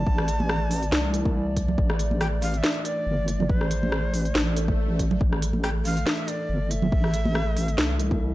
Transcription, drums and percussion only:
0.07 kick
0.18 cross-stick
0.28 closed hi-hat
0.40 high conga
0.49 cross-stick
0.71 open hi-hat
0.83 closed hi-hat
0.92 snare
1.14 closed hi-hat
1.25 kick, high conga
1.57 kick, closed hi-hat
1.68 low conga
1.78 kick
1.90 cross-stick
1.99 closed hi-hat
2.11 high conga
2.21 cross-stick
2.42 open hi-hat
2.54 closed hi-hat
2.64 snare
2.85 closed hi-hat
3.28 closed hi-hat
3.40 low conga
3.49 kick
3.61 cross-stick
3.71 closed hi-hat
3.83 high conga
3.92 cross-stick
4.14 open hi-hat
4.25 closed hi-hat
4.35 snare
4.57 closed hi-hat
4.68 kick, high conga
4.99 kick, closed hi-hat
5.11 low conga
5.21 kick
5.33 cross-stick
5.42 closed hi-hat
5.53 high conga
5.64 cross-stick
5.85 open hi-hat
5.97 closed hi-hat
6.07 snare
6.28 closed hi-hat
6.71 closed hi-hat
6.82 low conga
6.92 kick
7.04 cross-stick
7.14 closed hi-hat
7.25 high conga
7.35 cross-stick
7.57 open hi-hat
7.68 closed hi-hat
7.78 snare
7.99 closed hi-hat
8.11 kick, high conga

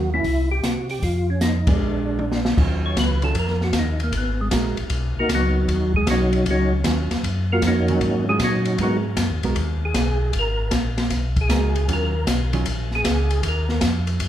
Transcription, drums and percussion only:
0.24 kick, open hi-hat
0.64 snare, closed hi-hat
0.89 open hi-hat
1.02 kick, open hi-hat
1.41 snare, closed hi-hat
1.67 kick, ride
2.19 high tom
2.32 snare
2.45 snare
2.58 kick, crash
2.96 kick, snare, hi-hat pedal, ride
3.22 ride
3.35 kick, ride
3.48 snare
3.61 snare
3.73 kick, snare, hi-hat pedal, ride
4.00 ride
4.12 kick, ride
4.51 kick, snare, hi-hat pedal, ride
4.77 ride
4.90 kick, ride
5.29 kick, snare, hi-hat pedal, ride
5.68 kick, ride
5.94 kick
6.07 kick, snare, hi-hat pedal, ride
6.33 ride
6.46 kick, ride
6.84 kick, snare, hi-hat pedal, ride
7.11 snare, ride
7.23 kick, ride
7.62 kick, snare, hi-hat pedal, ride
7.88 ride
8.01 kick, ride
8.40 kick, snare, hi-hat pedal, ride
8.65 ride
8.78 kick, ride
9.17 kick, snare, hi-hat pedal, ride
9.43 ride
9.56 kick, ride
9.94 kick, snare, hi-hat pedal, ride
10.33 kick, ride
10.71 kick, snare, hi-hat pedal, ride
10.98 snare, ride
11.10 kick, snare, ride
11.36 kick, ride
11.50 kick, snare, hi-hat pedal, ride
11.75 ride
11.88 kick, ride
12.27 kick, snare, hi-hat pedal, ride
12.53 ride
12.66 kick, ride
12.91 snare
13.04 kick, snare, hi-hat pedal, ride
13.30 ride
13.43 kick, ride
13.69 snare
13.81 kick, snare, hi-hat pedal, ride
14.07 ride
14.20 kick, ride

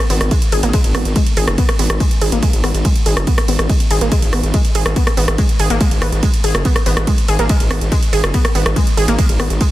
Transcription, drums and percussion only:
0.10 open hi-hat
0.21 cross-stick, closed hi-hat
0.31 kick, closed hi-hat, ride
0.42 closed hi-hat
0.52 open hi-hat
0.63 closed hi-hat
0.73 kick, closed hi-hat, ride
0.84 closed hi-hat
0.95 cross-stick, open hi-hat
1.05 closed hi-hat
1.16 kick, closed hi-hat, ride
1.26 closed hi-hat
1.37 open hi-hat
1.48 cross-stick, closed hi-hat
1.58 kick, closed hi-hat, ride
1.69 cross-stick, closed hi-hat
1.79 open hi-hat
1.90 cross-stick, closed hi-hat
2.00 kick, closed hi-hat, ride
2.11 closed hi-hat
2.21 open hi-hat
2.32 closed hi-hat
2.43 kick, closed hi-hat, ride
2.53 closed hi-hat
2.64 cross-stick, open hi-hat
2.75 closed hi-hat
2.85 kick, closed hi-hat, ride
2.96 closed hi-hat
3.06 open hi-hat
3.17 cross-stick, closed hi-hat
3.27 kick, closed hi-hat, ride
3.38 cross-stick, closed hi-hat
3.48 open hi-hat
3.59 cross-stick, closed hi-hat
3.69 kick, closed hi-hat, ride
3.80 closed hi-hat
3.91 open hi-hat
4.01 closed hi-hat
4.12 kick, closed hi-hat, ride
4.22 closed hi-hat
4.33 cross-stick, open hi-hat
4.43 closed hi-hat
4.54 kick, closed hi-hat, ride
4.65 closed hi-hat
4.75 open hi-hat
4.86 cross-stick, closed hi-hat
4.96 kick, closed hi-hat, ride
5.07 cross-stick, closed hi-hat
5.17 open hi-hat
5.28 cross-stick, closed hi-hat
5.38 kick, closed hi-hat, ride
5.49 closed hi-hat
5.59 open hi-hat
5.70 closed hi-hat
5.81 kick, closed hi-hat, ride
5.91 closed hi-hat
6.02 cross-stick, open hi-hat
6.12 closed hi-hat
6.23 kick, closed hi-hat, ride
6.34 closed hi-hat
6.44 open hi-hat
6.55 cross-stick, closed hi-hat
6.65 kick, closed hi-hat, ride
6.76 cross-stick, closed hi-hat
6.86 open hi-hat
6.97 cross-stick, closed hi-hat
7.07 kick, closed hi-hat, ride
7.18 closed hi-hat
7.28 open hi-hat
7.39 closed hi-hat
7.49 kick, closed hi-hat, ride
7.60 closed hi-hat
7.71 cross-stick, open hi-hat
7.81 closed hi-hat
7.92 kick, closed hi-hat, ride
8.03 closed hi-hat
8.13 open hi-hat
8.24 cross-stick, closed hi-hat
8.34 kick, closed hi-hat, ride
8.45 cross-stick, closed hi-hat
8.55 open hi-hat
8.66 cross-stick, closed hi-hat
8.76 kick, closed hi-hat, ride
8.87 closed hi-hat
8.97 open hi-hat
9.08 closed hi-hat
9.19 kick, closed hi-hat, ride
9.29 closed hi-hat
9.40 cross-stick, open hi-hat
9.50 closed hi-hat
9.61 kick, closed hi-hat, ride

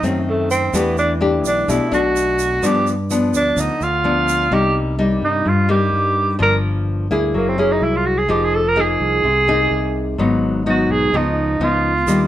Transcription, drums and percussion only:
0.03 shaker
0.51 shaker
0.74 shaker
0.98 shaker
1.45 shaker
1.69 shaker
1.93 shaker
2.16 shaker
2.39 shaker
2.63 shaker
2.87 shaker
3.11 shaker
3.34 shaker
3.57 shaker
3.81 shaker
4.28 shaker
12.08 shaker

